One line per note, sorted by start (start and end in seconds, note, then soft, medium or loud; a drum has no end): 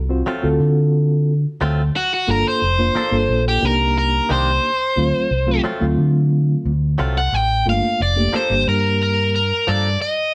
0.00 0.21 C2 medium
0.09 0.32 C4 medium
0.09 0.32 F4 medium
0.09 0.32 F#4 medium
0.09 0.32 C5 medium
0.26 0.47 F#3 medium
0.26 0.47 A3 medium
0.26 0.47 C4 medium
0.26 0.47 F4 medium
0.26 muted fingered electric bass stroke soft
0.43 0.58 D2 medium
0.43 1.32 C4 medium
0.43 1.32 F4 medium
0.43 1.33 F#4 medium
0.43 1.33 A4 medium
0.60 1.45 D3 medium
1.61 1.89 D2 medium
1.61 1.81 F#3 medium
1.61 1.81 A3 medium
1.61 1.82 C4 loud
1.61 1.82 F4 loud
1.96 2.12 F#4 loud
2.14 2.29 F#4 loud
2.27 2.42 G1 loud
2.27 2.61 A#3 medium
2.27 2.62 D4 medium
2.27 2.62 F4 medium
2.27 2.62 A4 medium
2.27 2.46 A#4 loud
2.48 3.45 C5 loud
2.62 2.90 F1 medium
2.79 3.01 A#3 medium
2.79 3.01 D4 medium
2.79 3.01 F4 medium
2.79 3.01 C5 medium
2.95 3.16 F3 medium
2.95 3.16 A#3 medium
2.95 3.16 D4 medium
2.95 3.16 A4 medium
2.95 muted fingered electric bass stroke soft
3.11 3.26 G1 loud
3.11 3.60 A#3 medium
3.11 3.61 D4 medium
3.11 3.63 F4 medium
3.11 3.63 A4 medium
3.29 3.57 A#1 medium
3.48 3.65 G4 medium
3.61 4.19 C2 loud
3.61 4.70 A#3 medium
3.61 4.70 D4 medium
3.61 4.70 D#4 medium
3.61 4.70 G4 medium
3.61 3.97 A#4 loud
3.98 4.30 A#4 medium
4.29 4.58 C2 medium
4.29 4.50 D#3 medium
4.29 4.50 A#3 medium
4.29 4.50 D4 medium
4.29 4.51 G4 medium
4.29 5.61 C5 loud
4.96 5.11 D2 loud
4.96 5.30 F#3 medium
4.96 5.30 A3 medium
4.96 5.30 C4 medium
4.96 5.31 F4 medium
5.31 5.59 C2 medium
5.47 5.69 F#3 medium
5.47 5.69 A3 medium
5.47 5.70 C4 medium
5.47 5.70 F4 medium
5.64 5.84 F#3 medium
5.64 5.84 A3 loud
5.64 5.85 C4 medium
5.64 5.85 F4 medium
5.64 muted fingered electric bass stroke soft
5.81 5.95 D2 loud
5.81 6.70 F#3 medium
5.81 6.70 A3 medium
5.81 6.70 C4 medium
5.81 6.70 F4 medium
5.98 6.54 D3 medium
6.65 6.95 D2 medium
6.98 7.29 C2 medium
6.98 7.19 F#3 medium
6.98 7.19 A3 medium
6.98 7.19 C4 medium
6.98 7.19 F4 medium
7.18 7.35 F#5 loud
7.33 7.63 A1 medium
7.33 7.66 G5 loud
7.66 7.80 G1 loud
7.66 7.99 A3 medium
7.66 7.99 A#3 medium
7.66 7.99 D4 medium
7.66 8.00 F4 medium
7.66 8.02 F5 medium
8.00 8.28 F1 medium
8.00 8.35 D5 medium
8.16 8.38 A3 medium
8.16 8.39 A#3 medium
8.16 8.39 D4 medium
8.16 8.39 G4 medium
8.33 8.53 F3 medium
8.33 8.53 A#3 medium
8.33 8.54 D4 medium
8.33 8.54 A4 medium
8.33 8.68 C5 medium
8.33 muted fingered electric bass stroke soft
8.50 8.64 G1 medium
8.50 9.39 G3 medium
8.50 9.39 A#3 medium
8.50 9.39 D4 medium
8.50 9.39 G4 medium
8.67 9.51 G2 medium
8.67 9.01 A#4 medium
9.03 9.34 A#4 medium
9.36 9.69 A#4 medium
9.67 9.96 G2 medium
9.67 9.87 F3 medium
9.67 9.88 A#3 medium
9.67 9.88 D4 medium
9.67 9.88 A4 medium
9.67 9.99 D5 medium
10.02 10.34 D#5 medium